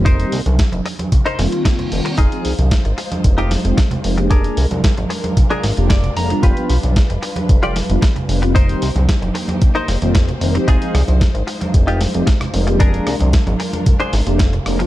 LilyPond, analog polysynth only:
\new Staff \with { instrumentName = "Analog polysynth" } { \time 4/4 \key c \minor \tempo 4 = 113 <ees g bes c' f'>16 <ees g bes c' g'>16 r2 <ees g bes c' f'>4. | r16 <f aes c' ees' aes'>16 r2 r16 <f aes c' ees' g'>16 r8 <f aes c' ees' bes'>16 <f aes bes d' g'>16~ | <f aes bes d' g'>16 <f aes bes d' aes'>16 r2 r16 <f aes bes d' g'>16 r8 <f aes bes d' bes'>16 <f g b d' f'>16~ | <f g b d' f'>16 <f g b d' g'>16 r2 r16 <f g b d' f'>16 r8 <f g b d' b'>16 <ees g bes c' f'>16~ |
<ees g bes c' f'>16 <ees g bes c' g'>16 r2 r16 <ees g bes c' f'>16 r8 <ees g bes c' bes'>16 <f aes c' ees' g'>16~ | <f aes c' ees' g'>16 <f aes c' ees' aes'>16 r2 r16 <f aes c' ees' g'>16 r8 <f aes c' ees' bes'>16 <f aes bes d' g'>16~ | <f aes bes d' g'>16 <f aes bes d' aes'>16 r2 r16 <f aes bes d' g'>16 r8 <f aes bes d' bes'>16 <f g b d' f'>16 | }